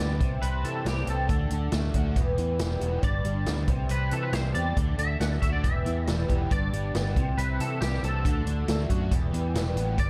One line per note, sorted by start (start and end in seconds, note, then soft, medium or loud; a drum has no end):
0.00 0.18 D2 medium
0.00 0.20 G2 medium
0.00 0.20 G3 medium
0.00 0.21 B3 medium
0.00 0.20 D4 medium
0.00 0.19 G4 medium
0.00 0.37 D5 medium
0.20 0.41 C2 medium
0.20 1.29 C3 medium
0.20 0.41 G3 soft
0.20 0.41 C4 soft
0.20 0.42 G4 soft
0.20 kick loud
0.20 closed hi-hat medium
0.41 0.62 C2 medium
0.41 0.84 E3 soft
0.41 0.84 G3 soft
0.41 0.85 C4 medium
0.41 0.86 G4 medium
0.41 0.64 B4 medium
0.41 closed hi-hat medium
0.63 0.84 C3 medium
0.63 1.29 E3 medium
0.63 0.86 A4 medium
0.63 closed hi-hat medium
0.85 1.05 C2 medium
0.85 1.07 E3 medium
0.85 1.07 G3 medium
0.85 1.06 C4 medium
0.85 1.06 G4 medium
0.85 1.07 G4 medium
0.85 snare loud
0.85 closed hi-hat medium
1.07 1.27 C2 medium
1.07 1.28 G3 soft
1.07 1.29 C4 soft
1.07 1.29 G4 medium
1.07 1.49 A4 medium
1.07 closed hi-hat medium
1.28 1.49 D2 medium
1.28 1.71 D3 medium
1.28 1.72 A3 medium
1.28 1.72 D4 medium
1.28 1.72 F#4 medium
1.28 kick loud
1.28 closed hi-hat medium
1.50 1.71 D2 medium
1.50 2.17 D3 medium
1.50 closed hi-hat medium
1.72 1.92 D2 medium
1.72 1.94 D3 medium
1.72 1.94 A3 medium
1.72 1.93 D4 medium
1.72 1.92 F#4 medium
1.72 snare loud
1.72 closed hi-hat medium
1.94 2.14 D2 medium
1.94 2.16 A3 soft
1.94 2.16 D4 soft
1.94 2.15 F#4 medium
1.94 kick medium
1.94 closed hi-hat medium
2.15 2.36 E1 medium
2.15 3.03 E2 medium
2.15 2.59 E3 medium
2.15 2.59 G3 medium
2.15 2.60 B3 medium
2.15 2.60 G4 medium
2.15 kick medium
2.15 closed hi-hat medium
2.38 2.58 E2 medium
2.38 3.03 E3 medium
2.38 closed hi-hat soft
2.59 2.80 E1 medium
2.59 2.81 E3 medium
2.59 2.81 G3 medium
2.59 2.80 B3 medium
2.59 2.79 G4 medium
2.59 snare loud
2.59 closed hi-hat medium
2.81 3.01 E1 medium
2.81 3.02 E3 soft
2.81 3.01 G3 medium
2.81 3.02 B3 soft
2.81 3.02 G4 medium
2.81 closed hi-hat medium
3.02 3.23 G1 medium
3.02 3.46 G2 medium
3.02 3.46 D3 medium
3.02 3.45 G3 medium
3.02 3.46 B3 medium
3.02 3.47 D4 medium
3.02 3.47 G4 medium
3.02 3.91 D5 medium
3.02 kick loud
3.02 closed hi-hat medium
3.25 3.45 G1 medium
3.25 3.68 G3 medium
3.25 closed hi-hat medium
3.46 3.66 D2 medium
3.46 3.68 G3 medium
3.46 3.68 B3 medium
3.46 3.69 D4 medium
3.46 3.67 G4 medium
3.46 snare medium
3.46 closed hi-hat medium
3.68 3.88 C2 medium
3.68 4.77 C3 medium
3.68 3.88 G3 soft
3.68 3.90 C4 soft
3.68 3.90 G4 medium
3.68 kick loud
3.68 closed hi-hat medium
3.89 4.10 C2 medium
3.89 4.31 E3 medium
3.89 4.32 G3 medium
3.89 4.32 C4 medium
3.89 4.33 G4 medium
3.89 4.13 B4 medium
3.89 closed hi-hat medium
4.11 4.32 C3 medium
4.11 4.77 E3 medium
4.11 4.23 A4 medium
4.11 closed hi-hat medium
4.23 4.33 B4 medium
4.32 4.53 C2 medium
4.32 4.54 E3 medium
4.32 4.55 G3 medium
4.32 4.54 C4 medium
4.32 4.53 G4 medium
4.32 4.54 C5 medium
4.32 snare loud
4.32 closed hi-hat medium
4.54 4.75 E2 medium
4.54 4.76 G3 soft
4.54 4.76 C4 soft
4.54 4.76 G4 soft
4.54 4.95 D5 medium
4.54 closed hi-hat medium
4.76 4.97 D2 medium
4.76 5.18 D3 medium
4.76 5.19 A3 medium
4.76 5.19 D4 medium
4.76 5.20 F#4 medium
4.76 kick medium
4.76 closed hi-hat medium
4.98 5.18 D2 medium
4.98 5.63 D3 medium
4.98 5.20 E5 medium
4.98 closed hi-hat medium
5.20 5.40 D2 medium
5.20 5.42 D3 medium
5.20 5.42 A3 medium
5.20 5.41 D4 medium
5.20 5.40 F#4 medium
5.20 5.26 F#5 medium
5.20 snare medium
5.20 closed hi-hat medium
5.41 5.62 D2 medium
5.41 5.64 A3 soft
5.41 5.64 D4 soft
5.41 5.63 F#4 soft
5.41 5.52 E5 medium
5.41 kick medium
5.41 closed hi-hat medium
5.53 5.63 D5 medium
5.63 5.84 E1 medium
5.63 6.50 E2 medium
5.63 6.06 E3 soft
5.63 6.07 G3 medium
5.63 6.08 B3 medium
5.63 6.08 G4 medium
5.63 6.10 E5 medium
5.63 kick loud
5.63 closed hi-hat medium
5.85 6.06 E2 medium
5.85 6.51 E3 medium
5.85 closed hi-hat medium
6.07 6.28 E1 medium
6.07 6.29 E3 soft
6.07 6.28 G3 medium
6.07 6.28 B3 medium
6.07 6.27 G4 medium
6.07 6.25 D5 medium
6.07 snare loud
6.07 closed hi-hat medium
6.28 6.49 E1 medium
6.28 6.51 E3 soft
6.28 6.50 G3 soft
6.28 6.51 B3 medium
6.28 6.50 G4 medium
6.28 kick medium
6.28 closed hi-hat medium
6.50 6.71 G1 medium
6.50 6.94 G2 medium
6.50 6.94 D3 medium
6.50 6.93 G3 medium
6.50 6.94 B3 medium
6.50 6.94 D4 medium
6.50 6.95 G4 medium
6.50 7.37 D5 loud
6.50 kick medium
6.50 closed hi-hat medium
6.73 6.93 G1 medium
6.73 7.16 G3 medium
6.73 closed hi-hat medium
6.94 7.15 G1 medium
6.94 7.16 G3 soft
6.94 7.16 B3 medium
6.94 7.16 D4 medium
6.94 7.15 G4 medium
6.94 snare loud
6.94 closed hi-hat medium
7.16 7.36 C2 medium
7.16 8.24 C3 medium
7.16 7.38 G3 soft
7.16 7.38 E4 soft
7.16 7.38 G4 medium
7.16 kick loud
7.16 closed hi-hat medium
7.37 7.58 C2 medium
7.37 7.81 E3 soft
7.37 7.82 G3 medium
7.37 8.02 C4 medium
7.37 7.82 E4 medium
7.37 7.82 G4 medium
7.37 7.60 B4 medium
7.37 closed hi-hat medium
7.59 7.80 C3 medium
7.59 8.24 E3 medium
7.59 7.80 A4 medium
7.59 closed hi-hat medium
7.81 8.01 C2 medium
7.81 8.03 E3 medium
7.81 8.04 G3 medium
7.81 8.04 E4 medium
7.81 8.03 G4 medium
7.81 snare loud
7.81 closed hi-hat medium
7.93 snare soft
8.03 8.23 C2 medium
8.03 8.25 G3 soft
8.03 8.24 C4 medium
8.03 8.25 E4 soft
8.03 8.25 G4 medium
8.03 8.44 A4 medium
8.03 closed hi-hat medium
8.25 8.45 D2 medium
8.25 8.68 D3 medium
8.25 8.68 A3 medium
8.25 8.69 D4 medium
8.25 8.69 F#4 medium
8.25 kick loud
8.25 closed hi-hat medium
8.46 8.66 D2 medium
8.46 9.11 D3 medium
8.46 closed hi-hat medium
8.68 8.88 D2 medium
8.68 8.90 D3 medium
8.68 8.90 A3 medium
8.68 8.91 D4 medium
8.68 8.89 F#4 medium
8.68 snare loud
8.68 closed hi-hat medium
8.90 9.10 F#2 medium
8.90 9.13 A3 soft
8.90 9.12 D4 soft
8.90 9.12 F#4 soft
8.90 kick medium
8.90 closed hi-hat medium
9.11 9.32 E1 medium
9.11 9.97 E2 medium
9.11 9.54 E3 medium
9.11 9.54 G3 medium
9.11 9.55 B3 medium
9.11 9.56 G4 medium
9.11 kick medium
9.11 closed hi-hat medium
9.33 9.53 E2 medium
9.33 9.98 E3 medium
9.33 closed hi-hat medium
9.54 9.75 E1 medium
9.54 9.76 E3 medium
9.54 9.76 G3 medium
9.54 9.76 B3 medium
9.54 9.75 G4 medium
9.54 snare loud
9.54 closed hi-hat medium
9.76 9.96 A1 medium
9.76 9.98 E3 medium
9.76 9.98 G3 soft
9.76 9.98 B3 medium
9.76 9.98 G4 medium
9.76 closed hi-hat medium
9.98 10.10 G1 medium
9.98 10.10 G2 medium
9.98 10.10 D3 medium
9.98 10.10 G3 medium
9.98 10.10 B3 medium
9.98 10.10 D4 medium
9.98 10.10 G4 medium
9.98 10.10 D5 loud
9.98 kick loud
9.98 closed hi-hat medium